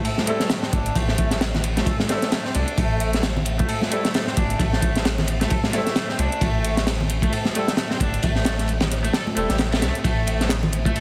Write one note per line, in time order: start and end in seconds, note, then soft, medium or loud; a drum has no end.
0.05 0.14 A4 medium
0.05 closed hi-hat soft
0.05 ride medium
0.18 snare soft
0.18 high conga loud
0.27 0.44 G3 medium
0.27 0.44 A3 medium
0.27 0.39 A3 medium
0.27 0.44 C4 medium
0.27 0.44 E4 medium
0.27 0.44 A4 medium
0.27 closed hi-hat medium
0.27 ride medium
0.40 0.62 A3 medium
0.40 snare medium
0.40 closed hi-hat soft
0.49 snare loud
0.49 closed hi-hat soft
0.49 ride medium
0.63 0.67 C4 medium
0.63 snare medium
0.73 0.90 G1 medium
0.73 0.95 D4 medium
0.73 kick medium
0.73 closed hi-hat medium
0.73 ride medium
0.73 high conga medium
0.86 closed hi-hat soft
0.86 ride soft
0.95 1.82 A1 medium
0.95 1.40 A3 loud
0.95 kick loud
0.95 closed hi-hat soft
0.95 ride medium
1.08 snare soft
1.18 kick medium
1.18 closed hi-hat medium
1.18 ride medium
1.31 snare soft
1.31 closed hi-hat soft
1.41 snare loud
1.41 closed hi-hat soft
1.41 ride medium
1.54 snare soft
1.54 low conga medium
1.64 closed hi-hat medium
1.64 ride medium
1.77 1.86 A3 medium
1.77 snare soft
1.77 closed hi-hat soft
1.77 high conga medium
1.86 1.95 A4 medium
1.86 kick loud
1.86 closed hi-hat soft
1.86 ride medium
2.00 snare medium
2.00 high conga medium
2.09 2.26 G3 medium
2.09 2.21 A3 medium
2.09 2.26 A3 medium
2.09 2.26 C4 medium
2.09 2.26 E4 medium
2.09 2.26 A4 medium
2.09 snare soft
2.09 closed hi-hat medium
2.09 ride medium
2.22 2.44 A3 medium
2.22 snare soft
2.22 closed hi-hat soft
2.32 snare loud
2.32 closed hi-hat soft
2.32 ride medium
2.45 2.49 C4 medium
2.45 snare soft
2.55 2.64 C2 medium
2.55 2.77 D4 medium
2.55 closed hi-hat medium
2.55 ride medium
2.55 high conga medium
2.68 closed hi-hat soft
2.78 3.64 A1 medium
2.78 3.22 A3 loud
2.78 kick loud
2.78 closed hi-hat soft
2.78 ride medium
3.00 closed hi-hat medium
3.00 ride medium
3.13 snare soft
3.13 closed hi-hat soft
3.23 snare loud
3.23 closed hi-hat soft
3.23 ride medium
3.37 low conga medium
3.45 closed hi-hat medium
3.45 ride medium
3.59 3.68 A3 medium
3.59 kick medium
3.59 closed hi-hat soft
3.59 high conga medium
3.69 3.77 A4 medium
3.69 closed hi-hat soft
3.69 ride loud
3.82 snare soft
3.82 high conga medium
3.91 4.08 G3 medium
3.91 4.08 A3 medium
3.91 4.04 A3 medium
3.91 4.08 C4 medium
3.91 4.08 E4 medium
3.91 4.08 A4 medium
3.91 closed hi-hat medium
3.91 ride medium
4.05 4.26 A3 medium
4.05 snare medium
4.05 closed hi-hat soft
4.14 snare loud
4.14 closed hi-hat soft
4.14 ride medium
4.27 4.31 C4 medium
4.27 snare medium
4.37 4.54 G1 medium
4.37 4.59 D4 medium
4.37 kick loud
4.37 closed hi-hat medium
4.37 ride medium
4.37 high conga medium
4.50 closed hi-hat soft
4.50 ride soft
4.59 5.46 A1 medium
4.59 5.04 A3 loud
4.59 kick loud
4.59 closed hi-hat soft
4.59 ride medium
4.73 snare soft
4.82 kick loud
4.82 closed hi-hat medium
4.82 ride medium
4.96 snare soft
4.96 closed hi-hat soft
5.05 snare loud
5.05 closed hi-hat soft
5.05 ride medium
5.18 snare soft
5.18 low conga medium
5.27 closed hi-hat medium
5.27 ride medium
5.41 5.50 A3 medium
5.41 snare soft
5.41 closed hi-hat soft
5.41 high conga medium
5.50 5.59 A4 medium
5.50 kick loud
5.50 closed hi-hat soft
5.50 ride medium
5.64 snare medium
5.64 high conga medium
5.73 5.90 G3 medium
5.73 5.90 A3 medium
5.73 5.86 A3 medium
5.73 5.90 C4 medium
5.73 5.90 E4 medium
5.73 5.90 A4 medium
5.73 snare soft
5.73 closed hi-hat medium
5.73 ride medium
5.87 6.08 A3 medium
5.87 snare soft
5.87 closed hi-hat soft
5.96 snare loud
5.96 closed hi-hat soft
5.96 ride medium
6.09 6.13 C4 medium
6.09 snare soft
6.19 6.28 C2 medium
6.19 6.41 D4 medium
6.19 closed hi-hat medium
6.19 ride medium
6.19 high conga medium
6.32 closed hi-hat soft
6.41 7.27 A1 loud
6.41 6.86 A3 loud
6.41 kick loud
6.41 closed hi-hat soft
6.41 ride medium
6.65 closed hi-hat medium
6.65 ride medium
6.77 snare medium
6.77 closed hi-hat soft
6.87 snare loud
6.87 closed hi-hat soft
6.87 ride medium
7.00 low conga medium
7.10 closed hi-hat medium
7.10 ride medium
7.22 7.32 A3 medium
7.22 kick medium
7.22 closed hi-hat soft
7.22 high conga medium
7.33 7.41 A4 medium
7.33 closed hi-hat soft
7.33 ride medium
7.45 snare soft
7.45 high conga medium
7.55 7.72 G3 medium
7.55 7.72 A3 medium
7.55 7.68 A3 medium
7.55 7.72 C4 medium
7.55 7.72 E4 medium
7.55 7.72 A4 medium
7.55 closed hi-hat medium
7.55 ride medium
7.68 7.90 A3 medium
7.68 snare medium
7.68 closed hi-hat soft
7.77 snare loud
7.77 closed hi-hat soft
7.77 ride medium
7.91 7.95 C4 medium
7.91 snare medium
8.00 8.17 G1 medium
8.00 8.23 D4 medium
8.00 kick medium
8.00 closed hi-hat medium
8.00 ride medium
8.00 high conga medium
8.14 closed hi-hat soft
8.14 ride soft
8.23 9.09 A1 loud
8.23 8.68 A3 loud
8.23 kick loud
8.23 closed hi-hat soft
8.23 ride medium
8.36 snare soft
8.45 snare loud
8.45 closed hi-hat medium
8.45 ride medium
8.59 snare soft
8.59 closed hi-hat soft
8.68 closed hi-hat soft
8.68 ride medium
8.80 snare loud
8.80 ride medium
8.80 low conga medium
8.91 snare soft
8.91 closed hi-hat medium
9.04 9.13 A3 medium
9.04 closed hi-hat soft
9.04 ride medium
9.04 high conga medium
9.13 9.23 A4 medium
9.13 snare loud
9.13 closed hi-hat soft
9.13 ride medium
9.13 swell medium
9.27 high conga medium
9.36 9.46 E1 loud
9.36 9.53 G3 medium
9.36 9.53 A3 medium
9.36 9.49 A3 medium
9.36 9.53 C4 medium
9.36 9.54 E4 medium
9.36 9.53 A4 medium
9.36 closed hi-hat medium
9.36 ride medium
9.49 9.83 A1 medium
9.49 9.59 G4 loud
9.49 snare soft
9.49 closed hi-hat soft
9.58 snare loud
9.58 closed hi-hat soft
9.58 ride medium
9.72 9.81 A3 medium
9.72 snare loud
9.72 ride medium
9.82 9.91 C2 medium
9.82 9.94 A3 medium
9.82 snare loud
9.82 closed hi-hat medium
9.82 ride medium
9.82 high conga medium
9.95 closed hi-hat soft
10.04 10.91 A1 loud
10.04 10.49 A3 loud
10.04 kick loud
10.04 closed hi-hat soft
10.04 ride medium
10.27 closed hi-hat medium
10.27 ride medium
10.41 snare soft
10.41 closed hi-hat soft
10.49 snare loud
10.49 clap loud
10.49 closed hi-hat soft
10.49 ride medium
10.63 low conga loud
10.72 closed hi-hat medium
10.72 ride medium
10.85 10.95 A3 medium
10.85 kick medium
10.85 closed hi-hat soft
10.85 high conga medium
10.96 11.00 A4 medium
10.96 closed hi-hat soft
10.96 ride medium